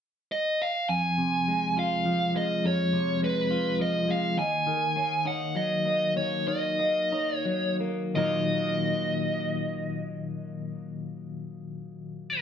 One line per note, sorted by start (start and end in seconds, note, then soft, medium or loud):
0.32 0.61 D#5 medium
0.62 0.89 F5 soft
0.89 2.35 F2 soft
0.89 1.79 G#5 medium
1.18 2.64 C3 soft
1.48 2.34 G#3 soft
1.77 3.22 F4 soft
1.77 2.32 F5 medium
2.06 3.51 F3 soft
2.35 3.21 G#3 soft
2.35 2.63 D#5 soft
2.64 4.09 F2 soft
2.64 3.19 C#5 soft
2.93 4.38 C3 soft
3.22 4.07 G#3 soft
3.22 3.77 B4 soft
3.51 4.38 F4 soft
3.79 4.38 F3 soft
3.79 4.11 D#5 medium
4.08 4.37 G#3 soft
4.08 4.37 F5 soft
4.37 6.16 D#2 soft
4.37 4.67 D#5 soft
4.37 5.27 G#5 medium
4.67 6.47 D#3 soft
4.67 4.96 A#4 soft
4.96 5.84 A#3 soft
4.96 5.23 C#5 soft
5.25 6.79 D#4 soft
5.25 5.85 C#5 soft
5.25 5.54 F#5 medium
5.55 7.12 F#3 soft
5.55 6.13 D#5 medium
5.85 6.78 A#3 soft
5.85 6.16 D#5 soft
6.16 7.80 D#2 soft
6.16 6.79 C#5 medium
6.16 6.48 C#5 medium
6.48 8.15 D#3 soft
6.48 7.36 D#5 soft
6.79 7.79 A#3 soft
6.79 7.12 D#5 soft
7.12 8.15 D#4 soft
7.12 7.80 C#5 soft
7.36 7.76 C#5 soft
7.45 8.15 F#3 soft
7.80 8.15 A#3 soft
7.80 8.15 A#4 soft
8.14 12.41 D#2 medium
8.14 12.41 A#2 soft
8.14 12.41 D#3 medium
8.14 12.41 F#3 medium
8.14 12.41 A#3 medium
8.14 12.41 D#4 medium
8.14 8.51 D#5 soft
8.14 12.41 D#5 soft